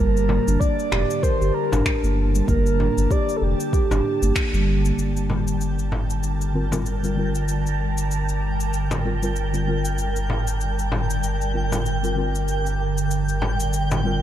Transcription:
0.00 0.39 G1 loud
0.00 4.94 D3 medium
0.00 0.15 G3 loud
0.00 4.94 G3 medium
0.00 0.61 A#4 loud
0.00 4.94 A5 medium
0.17 shaker soft
0.29 0.46 A#3 medium
0.29 frame drum medium
0.48 0.57 G1 medium
0.48 0.60 D4 medium
0.48 shaker medium
0.60 1.24 D5 loud
0.60 kick medium
0.60 shaker medium
0.79 shaker soft
0.92 1.04 F1 loud
0.92 1.09 G4 medium
0.92 finger snap medium
0.92 frame drum medium
1.10 shaker medium
1.23 1.40 A#4 medium
1.23 1.55 C5 loud
1.23 kick medium
1.23 shaker medium
1.41 1.51 G1 loud
1.41 1.54 G4 medium
1.41 shaker soft
1.54 2.17 A#4 medium
1.72 1.82 G1 loud
1.72 1.80 D4 loud
1.72 frame drum medium
1.72 shaker medium
1.86 finger snap medium
1.86 kick medium
1.86 shaker soft
2.03 2.42 G1 loud
2.03 2.16 A#3 medium
2.03 shaker soft
2.35 2.47 G3 medium
2.35 shaker medium
2.48 2.89 G1 loud
2.48 2.65 A#3 loud
2.48 3.13 A#4 loud
2.48 kick medium
2.48 shaker medium
2.66 shaker soft
2.80 2.97 D4 medium
2.80 frame drum medium
2.97 3.07 G1 medium
2.97 shaker medium
3.11 3.28 G4 medium
3.11 3.38 D5 loud
3.11 kick loud
3.11 shaker medium
3.29 shaker soft
3.36 3.45 A4 medium
3.42 3.54 F1 medium
3.42 4.36 G4 medium
3.60 shaker medium
3.73 3.84 G4 medium
3.73 kick loud
3.73 shaker medium
3.91 4.00 G1 medium
3.91 4.21 D4 medium
3.91 frame drum medium
3.91 shaker soft
4.22 4.32 G1 medium
4.22 4.52 A#3 medium
4.22 shaker medium
4.36 finger snap medium
4.36 kick loud
4.36 shaker medium
4.53 4.92 G1 loud
4.53 4.67 G3 medium
4.53 shaker soft
4.85 4.97 A#3 medium
4.85 shaker medium
4.97 14.22 G1 medium
4.97 14.22 D3 medium
4.97 14.22 G3 medium
4.97 14.22 A#4 medium
4.97 14.22 G5 medium
4.97 14.22 A5 medium
4.97 shaker soft
5.17 shaker soft
5.30 frame drum medium
5.48 shaker medium
5.61 shaker soft
5.79 shaker soft
5.92 frame drum medium
6.10 shaker medium
6.23 shaker soft
6.41 shaker soft
6.53 6.64 D3 medium
6.53 6.65 G3 medium
6.53 6.65 C4 medium
6.53 6.65 F4 medium
6.53 6.65 A#4 medium
6.71 6.79 D3 loud
6.71 6.80 G3 medium
6.71 6.80 C4 medium
6.71 6.80 F4 medium
6.71 6.81 A#4 loud
6.71 frame drum medium
6.71 shaker medium
6.86 shaker soft
7.02 7.13 D3 medium
7.02 7.14 G3 medium
7.02 7.14 C4 medium
7.02 7.14 F4 medium
7.02 7.14 A#4 medium
7.02 shaker soft
7.15 9.00 D3 medium
7.15 9.01 G3 medium
7.15 9.01 C4 medium
7.15 9.02 F4 medium
7.19 9.02 A#4 loud
7.35 shaker medium
7.48 shaker soft
7.67 shaker soft
7.98 shaker medium
8.11 shaker soft
8.29 shaker soft
8.60 shaker medium
8.73 shaker soft
8.91 frame drum medium
8.91 shaker soft
9.04 9.14 D3 medium
9.04 9.15 G3 medium
9.04 9.15 C4 medium
9.04 9.15 F4 medium
9.04 9.15 A#4 medium
9.21 9.30 D3 medium
9.21 9.30 G3 medium
9.21 9.30 C4 medium
9.21 9.30 F4 medium
9.21 9.31 A#4 loud
9.21 shaker medium
9.36 shaker soft
9.52 9.63 D3 medium
9.52 9.63 G3 medium
9.52 9.64 C4 medium
9.52 9.64 F4 medium
9.52 9.64 A#4 medium
9.52 shaker soft
9.65 11.50 D3 medium
9.65 11.51 G3 medium
9.65 11.52 C4 medium
9.65 11.52 F4 medium
9.65 11.52 A#4 medium
9.85 shaker medium
9.98 shaker soft
10.16 shaker soft
10.30 frame drum medium
10.47 shaker medium
10.61 shaker soft
10.79 shaker soft
10.92 frame drum medium
11.10 shaker medium
11.23 shaker medium
11.41 shaker soft
11.53 11.64 D3 medium
11.53 11.64 G3 medium
11.53 11.65 C4 medium
11.53 11.65 F4 medium
11.53 11.65 A#4 medium
11.71 11.80 D3 medium
11.71 11.80 G3 medium
11.71 11.80 C4 medium
11.71 11.80 F4 medium
11.71 11.81 A#4 loud
11.71 frame drum medium
11.71 shaker medium
11.86 shaker soft
12.02 12.13 D3 medium
12.02 12.13 G3 medium
12.02 12.13 C4 medium
12.02 12.14 F4 medium
12.02 12.14 A#4 medium
12.02 shaker soft
12.14 14.00 D3 medium
12.14 14.01 G3 medium
12.14 14.01 C4 medium
12.14 14.02 F4 medium
12.14 14.02 A#4 medium
12.35 shaker medium
12.48 shaker medium
12.66 shaker soft
12.98 shaker medium
13.11 shaker soft
13.29 shaker soft
13.42 frame drum medium
13.60 shaker medium
13.73 shaker medium
13.91 frame drum medium
13.91 shaker soft
14.02 14.22 D3 medium
14.02 14.22 G3 medium
14.02 14.22 C4 medium
14.02 14.22 F4 medium
14.02 14.22 A#4 loud

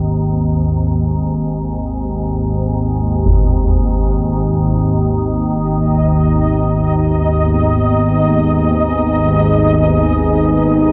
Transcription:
0.00 10.92 G#1 medium
0.00 10.92 D#2 medium
3.26 concert bass drum medium
5.52 10.92 B3 medium
5.52 10.92 D#5 medium
5.95 10.92 G#4 medium
6.34 10.92 D#5 medium
6.64 10.92 D#4 medium

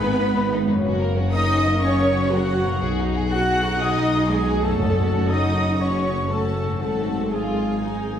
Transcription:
0.00 0.29 G#1 medium
0.00 0.76 G#2 medium
0.00 0.50 B3 medium
0.00 0.78 B3 soft
0.00 0.09 B3 soft
0.00 0.81 D#4 soft
0.00 0.09 D#4 medium
0.00 0.51 B4 medium
0.00 0.51 B5 medium
0.19 0.26 B3 medium
0.19 0.25 D#4 medium
0.34 0.78 G#1 medium
0.34 0.41 B3 soft
0.34 0.42 D#4 medium
0.52 0.58 B3 medium
0.52 0.59 D#4 medium
0.67 2.74 F#2 medium
0.67 0.74 B3 medium
0.67 0.74 D#4 medium
0.71 2.68 F#3 soft
0.75 2.78 A#3 soft
0.80 4.70 F#4 soft
0.84 2.78 F#1 medium
0.84 0.99 C#4 medium
0.84 0.99 F#4 medium
1.00 1.17 A#3 medium
1.00 1.17 A#4 medium
1.16 1.33 C#4 medium
1.16 1.33 F#4 medium
1.32 1.50 A#3 medium
1.32 1.79 D#4 medium
1.32 1.50 A#4 medium
1.32 1.79 D#5 medium
1.32 1.79 D#5 loud
1.32 1.79 D#6 medium
1.49 1.64 C#4 medium
1.49 1.65 F#4 soft
1.65 1.82 A#3 medium
1.65 1.82 A#4 soft
1.82 2.32 C#4 medium
1.82 1.99 C#4 medium
1.82 1.99 F#4 medium
1.82 2.32 C#5 medium
1.82 2.31 C#5 medium
1.82 2.31 C#6 medium
1.99 2.15 A#3 medium
1.99 2.16 A#4 medium
2.15 2.31 C#4 medium
2.15 2.30 F#4 soft
2.31 2.82 F#3 medium
2.31 2.48 A#3 medium
2.31 2.81 F#4 medium
2.31 2.48 A#4 medium
2.31 2.82 F#5 medium
2.47 2.65 C#4 medium
2.47 2.64 F#4 medium
2.64 4.73 B2 medium
2.64 2.81 A#3 medium
2.64 2.81 A#4 medium
2.69 4.65 F#3 soft
2.73 4.77 D#4 soft
2.78 4.76 B1 medium
2.78 2.97 F#4 medium
2.78 4.79 G#4 soft
2.78 2.96 G#4 medium
2.99 3.15 D#4 medium
2.99 3.13 F#4 medium
3.14 3.30 F#4 medium
3.14 3.31 G#4 medium
3.30 3.48 D#4 medium
3.30 3.77 F#4 medium
3.30 3.48 F#4 medium
3.30 3.78 F#5 medium
3.30 3.78 F#5 loud
3.30 3.78 F#6 medium
3.50 3.64 F#4 soft
3.50 3.64 G#4 soft
3.65 3.81 D#4 soft
3.65 3.80 F#4 soft
3.80 4.29 D#4 medium
3.80 3.95 F#4 medium
3.80 3.97 G#4 medium
3.80 4.29 D#5 medium
3.80 4.31 D#5 medium
3.80 4.30 D#6 medium
3.97 4.14 D#4 soft
3.97 4.13 F#4 medium
4.14 4.28 F#4 soft
4.14 4.29 G#4 soft
4.29 4.63 G#3 medium
4.29 4.46 D#4 soft
4.29 4.46 F#4 soft
4.29 4.63 G#4 medium
4.29 4.64 G#4 medium
4.29 4.63 G#5 medium
4.47 4.63 F#4 medium
4.47 4.64 G#4 medium
4.62 6.73 F#2 soft
4.62 5.28 A3 medium
4.62 4.80 D#4 soft
4.62 4.79 F#4 medium
4.62 5.28 A4 medium
4.62 5.30 A4 medium
4.62 5.28 A5 medium
4.66 6.66 F#3 soft
4.71 6.77 C#4 soft
4.79 6.76 F#1 medium
4.79 5.26 F#2 medium
4.79 5.76 C#4 medium
4.79 5.75 F#4 medium
5.29 5.78 D#4 medium
5.29 5.79 D#5 medium
5.29 5.80 D#5 medium
5.29 5.79 D#6 medium
5.80 6.29 C#4 medium
5.80 6.29 C#4 soft
5.80 6.29 F#4 soft
5.80 6.30 C#5 medium
5.80 6.29 C#5 medium
5.80 6.31 C#6 medium
6.30 6.80 A3 soft
6.30 6.80 C#4 soft
6.30 6.80 F#4 soft
6.30 6.80 A4 soft
6.30 6.81 A4 medium
6.30 6.80 A5 medium
6.63 8.20 G#2 soft
6.68 8.20 F#3 soft
6.72 8.20 C4 soft
6.77 8.20 G#1 soft
6.77 7.30 A3 soft
6.77 8.20 D#4 soft
6.81 7.32 C4 soft
6.81 7.31 F#4 soft
6.81 7.31 A4 medium
6.81 7.31 A5 medium
7.31 8.20 G#3 soft
7.31 7.78 F4 medium
7.31 8.20 G#4 soft
7.31 8.20 G#5 soft
7.82 8.20 D#4 soft

